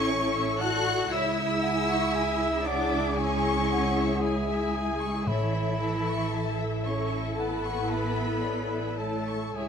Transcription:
0.00 1.07 A1 medium
0.00 0.59 C#4 medium
0.00 1.07 E4 medium
0.00 1.08 E4 medium
0.00 1.07 A4 medium
0.00 1.08 A4 medium
0.00 0.62 C#5 medium
0.00 0.60 C#6 loud
0.08 0.59 C#5 medium
0.08 0.34 C#5 medium
0.34 0.60 E5 medium
0.59 1.10 F#4 loud
0.59 1.12 D5 medium
0.59 1.12 F#5 medium
0.59 0.86 A5 medium
0.59 1.11 F#6 medium
0.86 1.11 C#6 medium
1.11 5.27 C#2 medium
1.11 2.65 E4 medium
1.11 5.23 E4 medium
1.11 5.11 E4 medium
1.11 5.27 G#4 medium
1.11 5.11 G#4 medium
1.11 1.35 C#5 medium
1.11 1.37 E5 medium
1.11 1.63 E5 medium
1.11 2.68 E5 medium
1.11 2.66 E6 medium
1.38 1.63 E5 medium
1.62 2.13 F#5 medium
1.62 1.89 G#5 medium
1.90 2.15 C#6 medium
2.14 2.65 E5 medium
2.14 2.40 G#5 medium
2.41 2.66 E5 medium
2.65 3.17 D4 medium
2.65 2.91 C#5 medium
2.65 3.20 D5 medium
2.65 3.17 F#5 medium
2.65 3.17 D6 medium
2.91 3.17 E5 medium
3.16 4.22 C#4 medium
3.16 4.23 C#5 medium
3.16 3.40 G#5 medium
3.16 3.69 G#5 medium
3.16 4.21 C#6 medium
3.42 3.68 C#6 soft
3.68 4.21 F#5 medium
3.68 3.94 G#5 medium
3.95 4.21 E5 soft
4.20 5.25 G#3 medium
4.20 5.29 G#4 medium
4.20 4.47 C#5 medium
4.20 4.95 E5 medium
4.20 5.25 G#5 medium
4.49 4.74 E5 medium
4.74 5.00 G#5 soft
5.00 5.27 C#6 soft
5.26 9.56 A1 medium
5.26 6.81 A2 medium
5.26 6.86 E3 medium
5.26 9.52 E4 medium
5.26 6.69 E4 medium
5.26 9.52 E4 medium
5.26 9.52 A4 medium
5.26 5.79 C#5 medium
5.26 5.51 C#5 medium
5.26 5.52 E5 medium
5.26 6.85 E5 medium
5.53 5.80 E5 soft
5.80 7.37 E5 medium
5.80 6.07 A5 soft
6.08 6.34 C#6 soft
6.33 6.59 A5 medium
6.59 6.85 E5 soft
6.86 7.38 C#4 medium
6.86 7.11 C#5 soft
6.86 7.19 C#5 medium
6.86 7.38 C#6 medium
7.10 7.37 E5 soft
7.38 9.00 B3 medium
7.38 8.96 B4 medium
7.38 7.90 F#5 medium
7.38 7.62 A5 soft
7.38 9.00 B5 medium
7.64 7.90 C#6 soft
7.90 8.44 E5 medium
7.90 8.17 A5 soft
8.17 8.44 E5 soft
8.43 8.72 C#5 soft
8.43 8.99 D5 medium
8.73 9.00 E5 soft
8.98 9.54 A3 medium
8.98 9.57 A4 medium
8.98 9.55 C#5 soft
8.98 9.54 A5 medium
8.98 9.27 A5 soft
9.29 9.56 C#6 soft
9.53 9.68 C#2 soft
9.53 9.68 G#3 medium
9.53 9.68 E4 soft
9.53 9.68 G#4 soft
9.53 9.68 C#5 medium
9.53 9.68 C#5 soft
9.53 9.68 E5 medium
9.53 9.68 E5 soft
9.53 9.68 G#5 medium

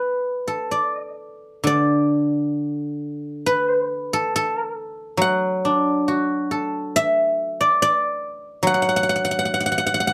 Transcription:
0.00 1.83 B4 medium
0.48 2.67 A4 soft
0.71 1.66 D5 medium
1.64 4.32 D3 medium
1.64 3.52 D5 medium
3.46 5.51 B4 medium
4.13 4.35 A4 medium
4.36 6.51 A4 medium
5.17 7.78 F#3 medium
5.22 6.90 F#5 loud
5.65 7.37 D4 soft
6.08 7.79 F#4 soft
6.51 8.22 A4 soft
6.96 8.68 E5 medium
7.61 7.82 D5 medium
7.82 9.67 D5 medium
8.63 10.13 F#3 medium
8.67 8.74 F#5 medium
8.74 8.82 F#5 medium
8.82 8.88 F#5 medium
8.89 8.96 F#5 medium
8.96 9.03 F#5 medium
9.03 9.09 F#5 medium
9.09 9.15 F#5 medium
9.16 9.24 F#5 medium
9.25 9.31 F#5 medium
9.31 9.38 F#5 medium
9.39 9.45 F#5 medium
9.45 9.53 F#5 medium
9.54 9.60 F#5 medium
9.60 9.66 F#5 medium
9.66 9.71 F#5 medium
9.72 9.78 F#5 medium
9.78 9.86 F#5 medium
9.87 9.94 F#5 medium
9.94 10.00 F#5 medium
10.00 10.07 F#5 medium
10.07 10.13 F#5 medium

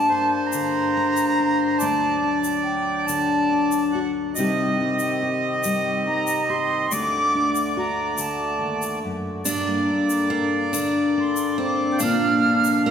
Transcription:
0.00 1.80 G2 medium
0.00 1.79 G3 medium
0.00 1.76 A#3 medium
0.00 1.79 A#3 medium
0.00 0.12 D4 medium
0.00 4.32 D5 medium
0.00 0.48 A5 loud
0.09 0.96 D4 medium
0.09 1.85 C5 loud
0.46 1.79 A#5 loud
0.53 3.08 D3 medium
0.53 shaker medium
0.97 1.39 D4 medium
1.17 shaker medium
1.40 1.76 D4 medium
1.78 4.36 D2 medium
1.78 3.99 D5 loud
1.78 2.37 A5 loud
1.78 shaker medium
1.82 4.34 F#3 medium
1.82 4.31 A3 medium
1.82 4.34 D4 medium
2.24 3.51 D4 medium
2.44 shaker medium
2.63 3.07 G5 medium
3.06 4.36 D3 medium
3.06 4.03 A5 loud
3.06 shaker medium
3.52 4.31 D4 medium
3.71 shaker medium
3.92 4.31 F#4 medium
3.92 4.12 F#5 medium
4.34 6.86 C3 medium
4.34 6.88 D#3 medium
4.34 5.64 G3 medium
4.34 6.88 C4 medium
4.34 6.87 G4 medium
4.34 6.86 D#5 loud
4.34 6.88 D#5 medium
4.34 shaker loud
4.39 6.87 C4 medium
4.39 4.79 D#4 medium
4.39 5.21 G4 medium
4.80 6.07 D#4 medium
4.99 shaker medium
5.23 6.48 G4 medium
5.63 6.87 G3 medium
5.63 shaker medium
6.07 6.87 D#4 medium
6.07 6.51 A#5 loud
6.27 shaker medium
6.49 6.86 G4 medium
6.49 6.94 C6 loud
6.91 8.17 D2 medium
6.91 9.44 D3 medium
6.91 9.44 A3 medium
6.91 9.41 A3 medium
6.91 9.44 F#4 medium
6.91 8.99 D5 loud
6.91 12.91 D5 medium
6.91 7.77 D6 loud
6.91 shaker loud
7.35 9.90 D4 medium
7.55 shaker medium
7.77 9.41 F#4 medium
7.77 8.21 A#5 medium
8.18 8.61 D2 medium
8.18 9.15 A5 medium
8.18 shaker medium
8.62 9.04 D#2 medium
8.82 shaker medium
9.04 9.46 F#2 medium
9.44 12.01 G2 medium
9.44 11.98 G3 medium
9.44 9.67 G3 medium
9.44 11.98 A#3 medium
9.44 10.29 D4 loud
9.44 11.98 A4 medium
9.44 12.00 D5 loud
9.44 shaker loud
9.67 12.01 A#3 medium
9.90 10.32 D4 medium
10.10 shaker medium
10.30 10.72 A#3 medium
10.30 11.16 D4 medium
10.73 12.01 D3 medium
10.73 11.56 D4 medium
10.73 shaker loud
11.18 11.59 D4 medium
11.18 11.57 C6 medium
11.36 shaker medium
11.58 12.00 C4 medium
11.58 11.97 D4 medium
11.58 12.04 D6 loud
11.92 12.00 G5 medium
11.98 12.91 A#2 medium
11.98 12.91 F3 medium
11.98 12.84 D4 loud
11.98 12.91 D4 medium
11.98 12.91 A#4 medium
11.98 12.91 F5 loud
11.98 shaker loud
12.03 12.91 D3 medium
12.03 12.91 A#3 medium
12.03 12.43 D4 medium
12.03 12.86 F4 medium
12.03 12.84 F6 loud
12.44 12.91 D4 medium
12.64 shaker medium
12.85 12.91 A#3 medium
12.85 12.91 F4 medium
12.85 12.91 F6 loud

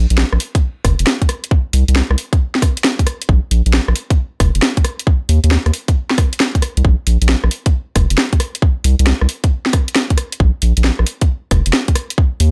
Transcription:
0.10 0.24 A#1 medium
0.10 closed hi-hat medium
0.18 snare loud
0.33 0.38 A#1 medium
0.33 cross-stick medium
0.40 open hi-hat loud
0.55 kick loud
0.55 closed hi-hat medium
0.85 0.95 F1 loud
0.85 kick loud
0.85 cross-stick medium
0.85 open hi-hat loud
0.99 1.05 F1 medium
0.99 closed hi-hat medium
1.07 snare loud
1.22 kick medium
1.22 closed hi-hat medium
1.29 cross-stick medium
1.29 open hi-hat loud
1.44 closed hi-hat medium
1.51 kick loud
1.73 1.84 C2 medium
1.73 open hi-hat loud
1.88 2.02 C2 medium
1.88 closed hi-hat medium
1.96 snare loud
2.10 2.16 C2 medium
2.10 cross-stick medium
2.18 open hi-hat loud
2.33 kick loud
2.33 closed hi-hat medium
2.55 snare medium
2.62 kick loud
2.62 cross-stick medium
2.62 open hi-hat loud
2.77 closed hi-hat medium
2.84 snare loud
2.84 open hi-hat medium
2.99 kick medium
2.99 closed hi-hat soft
3.07 cross-stick medium
3.07 open hi-hat loud
3.22 closed hi-hat medium
3.29 3.40 A#1 loud
3.29 kick loud
3.51 3.62 A#1 medium
3.51 open hi-hat loud
3.66 3.80 A#1 medium
3.66 closed hi-hat medium
3.73 snare loud
3.88 3.94 A#1 medium
3.88 cross-stick medium
3.96 open hi-hat loud
4.10 kick loud
4.10 closed hi-hat medium
4.40 4.51 F1 loud
4.40 kick loud
4.40 cross-stick medium
4.40 open hi-hat loud
4.55 4.60 F1 medium
4.55 closed hi-hat medium
4.62 snare loud
4.77 kick medium
4.77 closed hi-hat soft
4.85 cross-stick medium
4.85 open hi-hat medium
4.99 closed hi-hat medium
5.07 kick loud
5.29 5.40 D#2 medium
5.29 open hi-hat loud
5.44 5.58 D#2 medium
5.44 closed hi-hat medium
5.51 snare loud
5.66 5.71 D#2 medium
5.66 cross-stick medium
5.66 closed hi-hat soft
5.74 open hi-hat loud
5.88 kick loud
5.88 closed hi-hat medium
6.11 snare medium
6.18 kick loud
6.18 cross-stick medium
6.18 open hi-hat loud
6.33 closed hi-hat medium
6.40 snare loud
6.40 open hi-hat medium
6.55 kick medium
6.55 closed hi-hat soft
6.62 cross-stick medium
6.62 open hi-hat loud
6.77 6.82 C2 loud
6.77 closed hi-hat medium
6.85 6.95 A#1 loud
6.85 kick loud
7.07 7.17 A#1 medium
7.07 open hi-hat loud
7.22 7.35 A#1 medium
7.22 closed hi-hat medium
7.29 snare loud
7.44 7.49 A#1 medium
7.44 cross-stick medium
7.51 open hi-hat loud
7.66 kick loud
7.66 closed hi-hat medium
7.96 8.06 F1 loud
7.96 kick loud
7.96 cross-stick medium
7.96 open hi-hat loud
8.10 8.16 F1 medium
8.10 closed hi-hat medium
8.18 snare loud
8.33 kick medium
8.33 closed hi-hat soft
8.40 cross-stick medium
8.40 open hi-hat loud
8.55 closed hi-hat medium
8.62 kick loud
8.84 8.95 C2 medium
8.84 open hi-hat loud
8.99 9.13 C2 medium
8.99 closed hi-hat medium
9.07 snare loud
9.21 9.27 C2 medium
9.21 cross-stick medium
9.29 open hi-hat loud
9.44 kick loud
9.44 closed hi-hat medium
9.66 snare medium
9.73 kick loud
9.73 cross-stick medium
9.73 open hi-hat loud
9.88 closed hi-hat medium
9.96 snare loud
9.96 open hi-hat medium
10.10 kick medium
10.10 closed hi-hat medium
10.18 cross-stick medium
10.18 open hi-hat loud
10.32 closed hi-hat medium
10.40 10.51 A#1 loud
10.40 kick loud
10.62 10.73 A#1 medium
10.62 open hi-hat loud
10.77 10.91 A#1 medium
10.77 closed hi-hat medium
10.84 snare loud
10.99 11.05 A#1 medium
10.99 cross-stick medium
11.07 open hi-hat loud
11.21 kick loud
11.21 closed hi-hat medium
11.51 11.62 F1 loud
11.51 kick loud
11.51 cross-stick medium
11.51 open hi-hat loud
11.66 11.71 F1 medium
11.66 closed hi-hat medium
11.73 snare loud
11.88 kick medium
11.88 closed hi-hat medium
11.96 cross-stick medium
11.96 open hi-hat loud
12.10 closed hi-hat medium
12.18 kick loud
12.40 12.51 D#2 medium
12.40 open hi-hat loud

